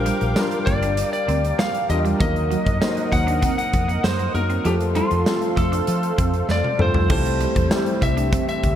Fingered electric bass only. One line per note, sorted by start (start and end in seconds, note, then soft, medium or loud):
0.22 0.33 A#1 medium
0.67 1.02 G1 medium
1.28 1.51 D2 medium
1.89 2.13 E2 loud
2.20 2.55 D#2 loud
2.67 2.78 F#2 medium
3.12 3.47 D#2 medium
3.73 3.96 F2 medium
4.04 4.27 F#2 medium
4.34 4.57 F#2 medium
4.65 5.00 F2 loud
5.12 5.23 F2 medium
5.57 5.80 F2 medium
5.88 6.11 F3 loud
6.19 6.41 F2 loud
6.49 6.60 F2 loud
6.79 6.91 G2 loud
6.95 7.06 F2 medium
7.10 7.45 C2 loud
7.56 7.67 E2 medium
8.02 8.37 C2 medium
8.63 8.76 D2 medium